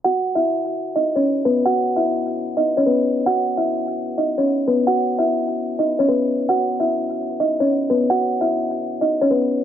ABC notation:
X:1
M:4/4
L:1/16
Q:1/4=149
K:B
V:1 name="Kalimba"
[Ff]3 [Ee]6 [Dd]2 [Cc]3 [B,B]2 | [Ff]3 [Ee]6 [Dd]2 [Cc] [B,B]4 | [Ff]3 [Ee]6 [Dd]2 [Cc]3 [B,B]2 | [Ff]3 [Ee]6 [Dd]2 [Cc] [B,B]4 |
[Ff]3 [Ee]6 [Dd]2 [Cc]3 [B,B]2 | [Ff]3 [Ee]6 [Dd]2 [Cc] [B,B]4 |]